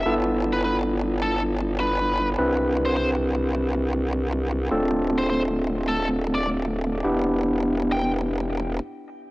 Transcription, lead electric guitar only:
X:1
M:4/4
L:1/16
Q:"Swing 16ths" 1/4=103
K:Ddor
V:1 name="Lead electric guitar"
z3 B B z3 A z3 B3 z | z3 c c z8 z3 | z3 c c z3 A z2 d z4 | z6 g z8 z |]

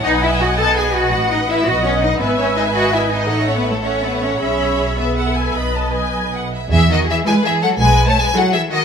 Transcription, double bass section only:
X:1
M:4/4
L:1/8
Q:1/4=110
K:Bmix
V:1 name="Double bass section" clef=bass
B,,,4 A,,,2 B,,,2 | G,,,4 A,,,4 | B,,,4 B,,,3 z | E,,2 z2 B,,,2 z2 |]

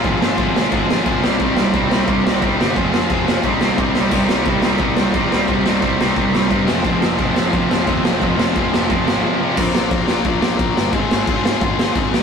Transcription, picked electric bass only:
X:1
M:4/4
L:1/8
Q:1/4=176
K:Cm
V:1 name="Picked electric bass" clef=bass
A,,, A,,, A,,,2 A,,,2 A,,, C,, | C,, C,, C,, C,, C,, C,, C,, G,,, | F,,, F,,, F,,,2 C,,2 C,, C,, | C,, C,, C,, C,, C,, C,, B,,, C,, |
C,, C,, C,, C,, C,, C,, G,, F,,, | F,,, F,,, F,,, F,,, F,,, F,,, E,, F,,, | F,,, F,,, F,,, F,,, F,,, A,,, z2 | B,,, B,,, B,,, B,,, B,,, B,,, B,,, G,,, |
A,,, A,,, A,,,2 A,,,2 A,,, C,, |]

